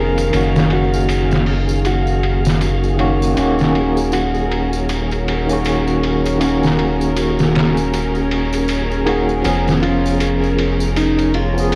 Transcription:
0.00 0.30 F1 medium
0.00 3.39 D#3 medium
0.00 0.28 F3 medium
0.00 0.29 B3 medium
0.00 0.30 C#4 medium
0.00 0.31 G#4 medium
0.00 11.75 G#4 medium
0.00 0.72 A#4 medium
0.00 3.39 F5 medium
0.17 ride soft
0.17 tambourine medium
0.30 3.34 F#1 medium
0.30 2.94 D#3 medium
0.30 2.95 A#3 medium
0.30 ride medium
0.30 tambourine medium
0.34 2.96 C#4 medium
0.34 2.97 F#4 medium
0.56 snare soft
0.56 tambourine soft
0.70 1.44 F#4 medium
0.70 ride medium
0.94 tambourine medium
1.09 ride medium
1.09 tambourine medium
1.31 snare soft
1.31 tambourine soft
1.46 open hi-hat medium
1.69 tambourine medium
1.85 2.96 F#4 medium
1.85 ride medium
1.85 tambourine medium
2.07 tambourine soft
2.23 ride medium
2.45 snare soft
2.45 tambourine medium
2.61 ride medium
2.61 tambourine medium
2.84 tambourine soft
2.97 3.32 D#3 medium
2.97 3.33 A#3 medium
2.97 3.33 C#4 medium
2.97 3.34 F#4 medium
2.97 ride medium
3.22 tambourine medium
3.34 9.42 D#1 medium
3.34 5.43 D#3 medium
3.34 5.44 A#3 medium
3.34 11.75 C#4 medium
3.34 3.62 C#4 medium
3.34 11.75 A#4 medium
3.34 ride medium
3.34 tambourine medium
3.39 5.45 C#4 medium
3.39 5.46 F#4 medium
3.59 snare soft
3.59 tambourine soft
3.75 ride medium
3.97 tambourine medium
4.12 4.86 F#4 medium
4.12 5.99 F#4 medium
4.12 ride medium
4.12 tambourine medium
4.35 tambourine soft
4.52 ride medium
4.73 tambourine medium
4.89 6.38 C#4 medium
4.89 ride medium
4.89 tambourine medium
5.11 ride soft
5.11 tambourine soft
5.28 ride medium
5.47 6.36 D#3 medium
5.47 6.37 A#3 medium
5.47 tambourine medium
5.51 6.38 C#4 medium
5.51 6.39 F#4 medium
5.64 ride medium
5.64 tambourine medium
5.87 tambourine soft
6.03 ride medium
6.25 ride soft
6.25 tambourine medium
6.38 9.01 D#3 medium
6.38 9.03 A#3 medium
6.38 6.66 C#4 medium
6.38 ride medium
6.38 tambourine soft
6.42 9.04 C#4 medium
6.42 9.05 F#4 medium
6.63 snare soft
6.63 tambourine soft
6.79 ride medium
7.01 tambourine medium
7.16 7.89 F#4 medium
7.16 ride medium
7.16 tambourine medium
7.39 snare soft
7.39 tambourine soft
7.55 snare medium
7.55 ride medium
7.77 tambourine medium
7.93 9.42 C#4 medium
7.93 ride medium
7.93 tambourine medium
8.15 tambourine soft
8.31 ride medium
8.53 ride soft
8.53 tambourine medium
8.68 ride medium
8.68 tambourine medium
8.91 tambourine soft
9.05 9.40 D#3 medium
9.05 9.41 A#3 medium
9.05 9.41 C#4 medium
9.05 9.42 F#4 medium
9.05 9.82 G#4 loud
9.05 ride medium
9.29 tambourine medium
9.42 11.75 F1 medium
9.42 11.50 F3 medium
9.42 11.51 B3 medium
9.42 9.69 C#4 medium
9.42 ride medium
9.42 tambourine medium
9.46 11.52 C#4 medium
9.46 11.53 G#4 medium
9.68 snare soft
9.68 tambourine soft
9.82 10.54 F4 medium
9.82 ride medium
10.05 tambourine medium
10.20 10.93 G#4 medium
10.20 ride medium
10.20 tambourine medium
10.44 tambourine soft
10.59 ride medium
10.80 tambourine medium
10.96 11.75 C#4 medium
10.96 11.32 D#4 medium
10.96 ride medium
10.96 tambourine medium
11.19 ride soft
11.19 tambourine soft
11.34 11.75 F4 medium
11.34 ride medium
11.54 11.75 F3 medium
11.54 11.75 B3 medium
11.54 tambourine medium
11.58 11.75 C#4 medium
11.58 11.75 G#4 medium
11.72 ride medium
11.72 tambourine soft

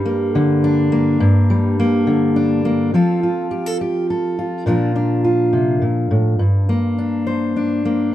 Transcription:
0.00 1.19 G2 medium
0.00 1.17 G3 medium
0.00 1.29 A#4 medium
0.05 0.91 A#3 medium
0.35 1.18 D3 medium
0.64 2.35 D4 medium
0.92 1.78 A#3 medium
1.20 2.93 G2 medium
1.50 2.90 G3 medium
1.80 2.64 A#3 medium
2.07 2.90 D3 medium
2.36 2.94 D4 medium
2.65 2.94 A#3 medium
2.94 4.65 F3 medium
2.94 4.64 C4 soft
2.94 3.23 F4 soft
2.94 3.51 A4 soft
3.23 4.37 F4 soft
3.51 3.66 G4 soft
3.66 3.80 A4 soft
3.81 4.09 G4 soft
4.10 4.64 A4 soft
4.39 4.64 F4 soft
4.66 5.80 A#2 medium
4.66 6.40 F3 soft
4.66 4.95 D4 soft
4.66 5.23 F4 soft
4.66 7.26 A#4 soft
4.96 6.69 D4 soft
5.24 6.37 F4 soft
5.53 5.82 C3 medium
5.82 6.10 A#2 soft
6.11 6.39 A2 soft
6.39 8.12 G2 medium
6.69 7.84 A#3 soft
6.98 7.55 D4 soft
7.27 8.10 C5 medium
7.56 8.14 D4 soft
7.85 8.14 A#3 soft

